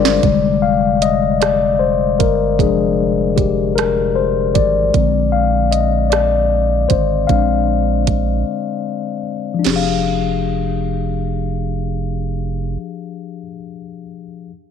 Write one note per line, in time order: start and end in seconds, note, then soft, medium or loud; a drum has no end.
0.00 0.20 G1 medium
0.00 0.21 F3 medium
0.00 0.20 G3 medium
0.00 0.20 G#3 soft
0.00 0.21 D4 medium
0.00 0.21 F4 loud
0.00 0.26 G#4 medium
0.00 0.26 A#4 loud
0.00 0.26 C5 loud
0.00 0.65 D5 loud
0.00 0.21 G5 medium
0.05 snare loud
0.23 2.23 F1 loud
0.23 1.38 D3 medium
0.23 1.38 G3 soft
0.23 1.38 G#3 soft
0.23 kick loud
0.23 closed hi-hat medium
0.62 1.03 F5 medium
1.02 1.42 D#5 medium
1.02 closed hi-hat medium
1.41 1.81 D5 medium
1.41 cross-stick loud
1.41 closed hi-hat medium
1.79 2.16 C5 medium
2.19 2.61 G1 medium
2.19 2.37 A#4 medium
2.19 kick medium
2.19 closed hi-hat medium
2.59 4.58 F1 loud
2.59 3.74 F3 soft
2.59 3.74 G#3 soft
2.59 3.74 D4 medium
2.59 3.34 G#4 medium
2.59 kick medium
2.59 closed hi-hat medium
3.36 3.73 G4 medium
3.36 kick medium
3.36 closed hi-hat medium
3.76 4.16 A#4 medium
3.76 cross-stick medium
3.76 closed hi-hat medium
4.16 4.56 C5 medium
4.55 4.91 G#1 medium
4.55 5.36 D5 medium
4.55 kick medium
4.55 closed hi-hat medium
4.94 6.87 A#1 medium
4.94 7.27 D3 medium
4.94 7.26 G#3 soft
4.94 7.26 C4 soft
4.94 kick loud
4.94 closed hi-hat medium
5.32 5.73 F5 medium
5.71 6.12 D#5 medium
5.71 closed hi-hat medium
6.10 6.85 D5 medium
6.10 cross-stick medium
6.10 closed hi-hat medium
6.89 7.26 G#1 medium
6.89 7.30 C5 medium
6.89 kick medium
6.89 closed hi-hat medium
7.27 8.43 A#1 loud
7.27 7.81 G#3 soft
7.27 7.82 C4 soft
7.27 7.82 D4 soft
7.27 9.20 F5 medium
7.27 kick medium
7.27 closed hi-hat medium
8.07 kick medium
8.07 closed hi-hat medium
9.54 13.41 F3 medium
9.59 13.43 D4 medium
9.64 12.77 F1 medium
9.64 13.46 G4 medium
9.64 snare medium
9.64 crash medium
9.70 13.49 G#4 medium
9.76 13.52 F5 medium